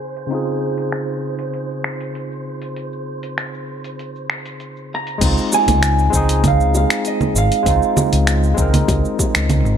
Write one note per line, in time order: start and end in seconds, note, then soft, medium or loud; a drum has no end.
0.00 0.26 C#3 medium
0.00 0.27 C4 medium
0.00 0.28 D#4 medium
0.00 0.30 G#4 medium
0.00 5.23 C5 medium
0.00 0.29 F5 medium
0.17 closed hi-hat soft
0.17 cabasa medium
0.27 5.15 C#3 medium
0.27 5.17 C4 medium
0.27 5.17 D#4 medium
0.31 5.18 F4 medium
0.31 5.19 G#4 medium
0.31 closed hi-hat soft
0.31 cabasa medium
0.47 cabasa soft
0.78 closed hi-hat soft
0.78 cabasa medium
0.92 finger snap medium
0.92 closed hi-hat soft
0.92 cabasa soft
1.08 cabasa soft
1.39 closed hi-hat soft
1.39 cabasa medium
1.54 closed hi-hat soft
1.54 cabasa medium
1.70 cabasa soft
1.84 finger snap medium
2.01 closed hi-hat soft
2.01 cabasa medium
2.15 closed hi-hat soft
2.15 cabasa medium
2.31 cabasa soft
2.62 closed hi-hat soft
2.62 cabasa medium
2.76 closed hi-hat soft
2.76 cabasa medium
2.92 cabasa soft
3.23 closed hi-hat soft
3.23 cabasa medium
3.38 finger snap medium
3.38 closed hi-hat soft
3.38 cabasa medium
3.54 cabasa soft
3.84 closed hi-hat soft
3.84 cabasa medium
3.99 closed hi-hat soft
3.99 cabasa medium
4.15 cabasa soft
4.30 finger snap medium
4.46 closed hi-hat soft
4.46 cabasa medium
4.60 closed hi-hat soft
4.60 cabasa soft
4.76 cabasa soft
4.95 5.54 A#5 medium
5.07 closed hi-hat soft
5.07 cabasa medium
5.18 5.33 C#2 medium
5.18 6.08 G#3 medium
5.18 6.09 C4 medium
5.18 kick loud
5.18 closed hi-hat soft
5.18 crash loud
5.18 cabasa soft
5.23 6.11 D#4 medium
5.23 6.12 F4 medium
5.38 cabasa soft
5.52 6.48 G#5 medium
5.52 high bongo medium
5.52 cabasa medium
5.68 6.06 C#2 medium
5.68 closed hi-hat medium
5.68 low conga medium
5.68 cabasa soft
5.83 finger snap medium
5.83 closed hi-hat soft
5.83 cabasa soft
5.98 cabasa soft
6.10 6.83 C#2 medium
6.10 7.61 G#3 medium
6.10 7.62 C4 medium
6.10 kick loud
6.10 cabasa medium
6.15 7.64 D#4 medium
6.15 7.65 G#4 loud
6.29 closed hi-hat medium
6.29 cabasa soft
6.44 6.76 F5 medium
6.44 kick loud
6.44 closed hi-hat soft
6.44 low conga medium
6.44 cabasa soft
6.60 cabasa soft
6.75 7.07 F5 medium
6.75 high bongo medium
6.75 cabasa medium
6.90 finger snap medium
6.90 closed hi-hat medium
6.90 cabasa soft
7.05 7.38 D#5 medium
7.05 closed hi-hat soft
7.05 cabasa soft
7.21 low conga medium
7.21 cabasa soft
7.36 7.47 G#1 loud
7.36 9.78 F5 medium
7.36 cabasa medium
7.52 closed hi-hat soft
7.52 cabasa soft
7.63 7.77 C#2 medium
7.63 8.53 G#3 medium
7.63 8.54 C4 medium
7.63 kick loud
7.63 closed hi-hat soft
7.63 cabasa soft
7.68 8.55 D#4 medium
7.68 8.57 F4 medium
7.82 cabasa soft
7.97 high bongo medium
7.97 low conga medium
7.97 cabasa medium
8.13 8.51 C#2 medium
8.13 closed hi-hat medium
8.13 cabasa soft
8.27 finger snap medium
8.27 closed hi-hat soft
8.27 cabasa soft
8.43 cabasa soft
8.54 8.80 C#2 medium
8.54 9.78 G#3 medium
8.54 9.78 C4 medium
8.54 kick loud
8.54 cabasa medium
8.59 9.78 D#4 medium
8.59 9.78 A#4 medium
8.74 closed hi-hat medium
8.74 low conga medium
8.74 cabasa soft
8.88 9.00 C#2 medium
8.88 kick loud
8.88 closed hi-hat soft
8.88 high bongo medium
8.88 cabasa soft
9.05 cabasa soft
9.19 kick loud
9.19 high bongo medium
9.19 cabasa medium
9.35 9.66 C#2 loud
9.35 finger snap medium
9.35 closed hi-hat medium
9.35 cabasa soft
9.50 closed hi-hat soft
9.50 low conga medium
9.50 cabasa soft
9.66 9.76 G#1 loud
9.66 cabasa soft